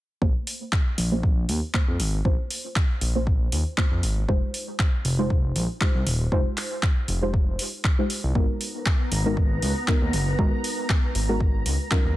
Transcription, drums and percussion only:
0.22 kick
0.47 open hi-hat
0.73 kick, clap
0.98 open hi-hat
1.23 kick
1.49 open hi-hat
1.74 kick, clap
2.00 open hi-hat
2.25 kick
2.51 open hi-hat
2.76 kick, clap
3.01 open hi-hat
3.27 kick
3.52 open hi-hat
3.78 kick, clap
4.03 open hi-hat
4.29 kick
4.54 open hi-hat
4.79 kick, clap
5.05 open hi-hat
5.30 kick
5.56 open hi-hat
5.81 kick, clap
6.07 open hi-hat
6.32 kick
6.57 clap, open hi-hat
6.83 kick, clap
7.08 open hi-hat
7.34 kick
7.59 open hi-hat
7.84 kick, clap
8.10 open hi-hat
8.35 kick
8.61 open hi-hat
8.86 kick, clap
9.12 open hi-hat
9.37 kick
9.62 open hi-hat
9.88 kick, clap
10.13 open hi-hat
10.39 kick
10.64 open hi-hat
10.90 kick, clap
11.15 open hi-hat
11.40 kick
11.66 open hi-hat
11.91 kick, clap

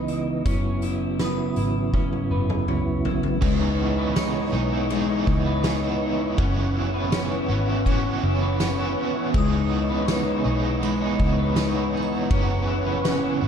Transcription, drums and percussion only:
0.08 closed hi-hat
0.46 kick, closed hi-hat
0.82 closed hi-hat
1.19 snare, closed hi-hat
1.56 closed hi-hat
1.94 kick, high tom
2.13 high tom
2.50 mid tom
2.68 mid tom
3.05 floor tom
3.23 floor tom
3.42 kick, crash
4.16 snare, ride, tambourine
4.90 ride
5.27 kick
5.64 snare, ride, tambourine
6.38 kick, ride
7.12 snare, ride, tambourine
7.86 kick, ride
8.60 snare, ride, tambourine
9.34 kick, ride
10.08 snare, ride, tambourine
10.83 ride
11.20 kick
11.56 snare, ride, tambourine
12.30 kick, ride
13.05 snare, ride, tambourine

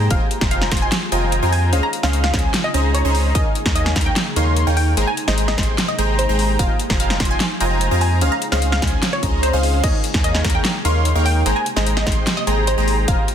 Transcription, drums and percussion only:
0.11 kick, closed hi-hat
0.31 closed hi-hat
0.41 kick, snare
0.51 closed hi-hat
0.62 snare
0.71 kick, snare, closed hi-hat
0.77 closed hi-hat
0.92 snare, closed hi-hat
1.12 closed hi-hat
1.32 closed hi-hat
1.52 open hi-hat
1.73 closed hi-hat
1.93 closed hi-hat
2.03 snare
2.13 closed hi-hat
2.24 snare
2.34 kick, snare, closed hi-hat
2.39 closed hi-hat
2.54 snare, closed hi-hat
2.74 closed hi-hat
2.95 closed hi-hat
3.15 open hi-hat
3.35 kick, closed hi-hat
3.55 closed hi-hat
3.66 kick, snare
3.76 closed hi-hat
3.86 snare
3.96 kick, snare, closed hi-hat
4.01 closed hi-hat
4.16 snare, closed hi-hat
4.36 closed hi-hat
4.56 closed hi-hat
4.77 open hi-hat
4.97 closed hi-hat
5.17 closed hi-hat
5.28 snare
5.38 closed hi-hat
5.48 snare
5.58 kick, snare, closed hi-hat
5.63 closed hi-hat
5.78 snare, closed hi-hat
5.99 closed hi-hat
6.19 closed hi-hat
6.39 open hi-hat
6.59 kick, closed hi-hat
6.79 closed hi-hat
6.90 kick, snare
7.00 closed hi-hat
7.10 snare
7.20 kick, snare, closed hi-hat
7.25 closed hi-hat
7.40 snare, closed hi-hat
7.60 closed hi-hat
7.81 closed hi-hat
8.01 open hi-hat
8.21 closed hi-hat
8.42 closed hi-hat
8.52 snare
8.62 closed hi-hat
8.72 snare
8.82 kick, snare, closed hi-hat
8.87 closed hi-hat
9.03 snare, closed hi-hat
9.23 kick, closed hi-hat
9.43 closed hi-hat
9.63 open hi-hat
9.84 kick, closed hi-hat, crash
10.04 closed hi-hat
10.14 kick, snare
10.24 closed hi-hat
10.35 snare
10.44 kick, snare, closed hi-hat
10.50 closed hi-hat
10.65 snare, closed hi-hat
10.85 closed hi-hat
11.05 closed hi-hat
11.26 open hi-hat
11.46 closed hi-hat
11.66 closed hi-hat
11.77 snare
11.87 closed hi-hat
11.97 snare
12.07 kick, snare, closed hi-hat
12.12 closed hi-hat
12.27 snare, closed hi-hat
12.47 closed hi-hat
12.67 closed hi-hat
12.88 open hi-hat
13.08 kick, closed hi-hat
13.28 closed hi-hat

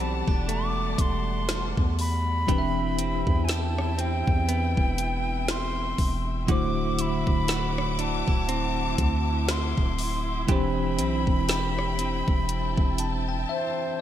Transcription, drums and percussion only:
0.28 kick
0.49 closed hi-hat
0.98 kick, closed hi-hat
1.49 snare, closed hi-hat
1.77 kick
1.99 open hi-hat
2.48 kick, closed hi-hat
2.99 closed hi-hat
3.27 kick
3.49 snare, closed hi-hat
3.78 cross-stick
3.99 closed hi-hat
4.28 kick
4.49 closed hi-hat
4.77 kick
4.98 closed hi-hat
5.48 snare, closed hi-hat
5.98 kick, open hi-hat
6.48 kick, closed hi-hat
6.99 closed hi-hat
7.27 kick
7.48 snare, closed hi-hat
7.78 cross-stick
7.99 closed hi-hat
8.28 kick
8.49 closed hi-hat
8.98 kick, closed hi-hat
9.49 snare, closed hi-hat
9.78 kick
9.98 open hi-hat
10.48 kick, closed hi-hat
10.99 closed hi-hat
11.27 kick
11.49 snare, closed hi-hat
11.79 cross-stick
11.99 closed hi-hat
12.28 kick
12.49 closed hi-hat
12.78 kick
12.98 closed hi-hat

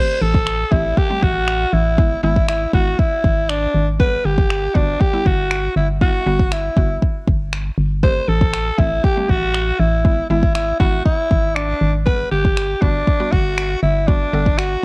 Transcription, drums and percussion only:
0.34 kick
0.47 finger snap
0.72 kick
0.97 kick
1.23 kick
1.48 finger snap
1.98 kick
2.36 kick
2.48 finger snap
2.73 kick
2.99 kick
3.24 kick
3.49 finger snap
4.00 kick
4.38 kick
4.50 finger snap
4.75 kick
5.01 kick
5.26 kick
5.51 finger snap
6.01 kick
6.39 kick
6.52 finger snap
6.77 kick
7.02 kick
7.27 kick
7.53 finger snap
8.03 kick
8.41 kick
8.54 finger snap
8.78 kick
9.04 kick
9.29 kick
9.54 finger snap
10.05 kick
10.43 kick
10.55 finger snap
10.80 kick
11.06 kick
11.31 kick
11.56 finger snap
12.07 kick
12.45 kick
12.57 finger snap
12.82 kick
13.07 kick
13.32 kick
13.58 finger snap
14.08 kick
14.46 kick
14.59 finger snap

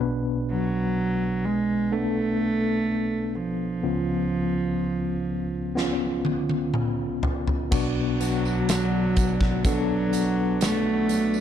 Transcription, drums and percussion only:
5.77 snare
6.25 high tom
6.49 high tom
6.74 mid tom
7.23 floor tom
7.47 floor tom
7.72 kick, crash, tambourine
8.21 closed hi-hat, tambourine
8.45 tambourine
8.69 snare, closed hi-hat, tambourine
9.16 kick, closed hi-hat, tambourine
9.41 kick, snare
9.65 kick, closed hi-hat, tambourine
10.13 closed hi-hat, tambourine
10.61 snare, closed hi-hat, tambourine
11.09 closed hi-hat, tambourine
11.34 tambourine

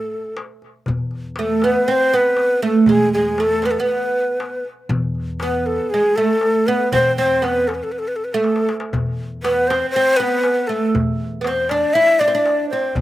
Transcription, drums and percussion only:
0.12 darbuka ka
0.24 darbuka ka
0.37 darbuka tek
0.62 darbuka ka
0.86 darbuka dum
0.98 darbuka ka
1.11 darbuka ka
1.36 darbuka tek
1.62 darbuka tek
2.24 darbuka ka
2.37 darbuka tek
2.62 darbuka ka
2.86 darbuka dum
3.38 darbuka tek
3.64 darbuka tek
3.76 darbuka ka
3.88 darbuka ka
4.28 darbuka ka
4.40 darbuka tek
4.65 darbuka ka
4.90 darbuka dum
5.02 darbuka ka
5.15 darbuka ka
5.40 darbuka tek
5.78 darbuka ka
5.89 darbuka ka
6.29 darbuka ka
6.41 darbuka tek
6.67 darbuka ka
6.92 darbuka dum
7.18 darbuka ka
7.32 darbuka ka
7.44 darbuka tek
7.69 darbuka tek
7.82 darbuka ka
8.19 darbuka ka
8.32 darbuka ka
8.44 darbuka tek
8.56 darbuka ka
8.69 darbuka tek
8.80 darbuka ka
8.93 darbuka dum
9.06 darbuka ka
9.19 darbuka ka
9.44 darbuka tek
9.70 darbuka tek
9.82 darbuka ka
9.95 darbuka ka
10.33 darbuka ka
10.43 darbuka tek
10.69 darbuka ka
10.95 darbuka dum
11.07 darbuka ka
11.21 darbuka ka
11.44 darbuka tek
11.69 darbuka tek
11.95 darbuka ka
12.46 darbuka tek
12.71 darbuka ka
12.95 darbuka dum

